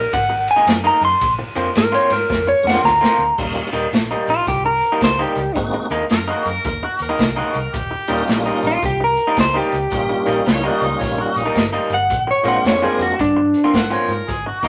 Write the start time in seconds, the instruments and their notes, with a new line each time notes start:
Already playing: electric slide guitar A#4
0.13 fingered electric bass G#1, electric slide guitar F#5, muted clean electric guitar stroke, kick, ride
0.29 muted clean electric guitar stroke
0.47 electric slide guitar G#5, ride
0.56 clean electric guitar D#3 G#3 A#3 D#4
0.67 fingered electric bass F#2, snare, ride
0.84 clean electric guitar D#3 G#3 A#3 D#4, electric slide guitar A#5
1.01 fingered electric bass F#2, electric slide guitar C6, ride
1.21 fingered electric bass A#1, kick, ride
1.39 muted clean electric guitar stroke
1.55 fingered electric bass F2, clean electric guitar F3 A#3 C4 F4, ride
1.75 fingered electric bass G#2, electric slide guitar A#4, muted clean electric guitar stroke, snare, ride
1.92 clean electric guitar F3 A#3 C4 F4, electric slide guitar C#5
2.10 fingered electric bass G#2, electric slide guitar A#4, snare, ride
2.29 fingered electric bass F2, muted clean electric guitar stroke, kick, snare
2.47 electric slide guitar C#5, muted clean electric guitar stroke
2.63 fingered electric bass F2, tonewheel organ G#3 A#3 C4 D4 F4
2.67 electric slide guitar F#5, snare
2.74 clean electric guitar F3 A#3 C4 F4
2.84 fingered electric bass D2, electric slide guitar A#5, kick, snare
3.01 clean electric guitar F3 A#3 C4 F4, snare
3.18 fingered electric bass D2
3.38 fingered electric bass D#1, tonewheel organ G3 A#3 C#4 D#4 F4, kick, crash
3.56 muted clean electric guitar stroke
3.72 fingered electric bass D#1, clean electric guitar D#3 G3 A#3 D#4, closed hi-hat
3.92 fingered electric bass A#1, muted clean electric guitar stroke, snare, closed hi-hat
4.11 clean electric guitar D#3 G3 A#3 D#4
4.27 fingered electric bass A#1, electric slide guitar F4, closed hi-hat
4.47 fingered electric bass C2, electric slide guitar G4, muted clean electric guitar stroke, kick, closed hi-hat
4.65 electric slide guitar A#4, muted clean electric guitar stroke
4.81 closed hi-hat
4.92 clean electric guitar D#3 G3 A#3 D#4
5.01 fingered electric bass C#2, electric slide guitar C5, kick, snare, closed hi-hat
5.19 clean electric guitar D#3 G3 A#3 D#4, electric slide guitar G4
5.36 fingered electric bass C#2, closed hi-hat
5.55 fingered electric bass G#1, tonewheel organ G#3 A#3 C4 D#4 F#4, kick, closed hi-hat
5.74 muted clean electric guitar stroke
5.90 fingered electric bass D#2, clean electric guitar D#3 G#3 A#3 D#4, closed hi-hat
6.09 fingered electric bass F#2, harmonica A#4, muted clean electric guitar stroke, snare, closed hi-hat
6.28 clean electric guitar D#3 G#3 A#3 D#4, harmonica F#4
6.45 fingered electric bass F#2, harmonica A#4, closed hi-hat
6.65 fingered electric bass D#2, harmonica A#4, muted clean electric guitar stroke, kick, closed hi-hat
6.83 harmonica F#4, muted clean electric guitar stroke
6.99 fingered electric bass D#2, harmonica A#4, closed hi-hat
7.09 clean electric guitar D#3 G#3 A#3 D#4
7.19 fingered electric bass C2, harmonica A#4, kick, snare, closed hi-hat
7.36 clean electric guitar D#3 G#3 A#3 D#4, harmonica F#4
7.54 fingered electric bass C2, harmonica A#4, closed hi-hat
7.74 fingered electric bass D#1, harmonica G4, kick, closed hi-hat
7.91 muted clean electric guitar stroke
8.08 fingered electric bass D#1, clean electric guitar D#3 G3 A#3 D#4, tonewheel organ G3 A#3 C#4 D#4 F4, closed hi-hat
8.28 fingered electric bass A#1, muted clean electric guitar stroke, snare, closed hi-hat
8.46 clean electric guitar D#3 G3 A#3 D#4
8.62 fingered electric bass A#1, closed hi-hat
8.67 electric slide guitar F4
8.82 fingered electric bass C2, electric slide guitar G4, muted clean electric guitar stroke, kick, closed hi-hat
9.00 electric slide guitar A#4, muted clean electric guitar stroke
9.16 closed hi-hat
9.27 clean electric guitar D#3 G3 A#3 D#4
9.36 fingered electric bass C#2, electric slide guitar C5, kick, snare, closed hi-hat
9.54 clean electric guitar D#3 G3 A#3 D#4, electric slide guitar G4
9.72 fingered electric bass C#2, closed hi-hat
9.90 fingered electric bass A#1, tonewheel organ G3 A#3 C#4 D#4 F4, kick, closed hi-hat
10.09 muted clean electric guitar stroke
10.26 fingered electric bass A#1, clean electric guitar D#3 G3 A#3 D#4, closed hi-hat
10.46 fingered electric bass C#2, harmonica C#5, muted clean electric guitar stroke, snare, closed hi-hat
10.64 clean electric guitar D#3 G3 A#3 D#4, harmonica F#4
10.81 fingered electric bass C#2, harmonica D#4, closed hi-hat
11.01 fingered electric bass A#1, harmonica C#5, muted clean electric guitar stroke, kick, snare, closed hi-hat
11.18 harmonica F#4, muted clean electric guitar stroke
11.36 fingered electric bass A#1, harmonica D#4, closed hi-hat
11.46 clean electric guitar D#3 G3 A#3 D#4
11.55 fingered electric bass G1, kick, snare, closed hi-hat
11.73 clean electric guitar D#3 G3 A#3 D#4
11.90 fingered electric bass G1, closed hi-hat
11.94 electric slide guitar F#5
12.10 fingered electric bass A#1, kick, closed hi-hat
12.27 electric slide guitar C#5, muted clean electric guitar stroke
12.43 fingered electric bass A#1, clean electric guitar F3 A#3 C4 F4, tonewheel organ G#3 A#3 C4 D4 F4, closed hi-hat
12.48 electric slide guitar F#5
12.64 fingered electric bass F2, electric slide guitar C#5, muted clean electric guitar stroke, snare, closed hi-hat
12.82 clean electric guitar F3 A#3 C4 F4, electric slide guitar G#4
12.98 fingered electric bass F2, closed hi-hat
13.03 electric slide guitar F#4
13.19 fingered electric bass G2, electric slide guitar D4, muted clean electric guitar stroke, kick, closed hi-hat
13.36 muted clean electric guitar stroke
13.54 closed hi-hat
13.64 clean electric guitar F3 A#3 C4 F4
13.74 fingered electric bass G#2, harmonica F#5, kick, snare, closed hi-hat
13.90 clean electric guitar F3 A#3 C4 F4, harmonica C#5
14.08 fingered electric bass G#2, harmonica A#4, closed hi-hat
14.28 fingered electric bass G#1, harmonica G#4, kick, closed hi-hat
14.46 harmonica F#4, muted clean electric guitar stroke
14.63 fingered electric bass D#2, clean electric guitar D#3 G#3 A#3 D#4, closed hi-hat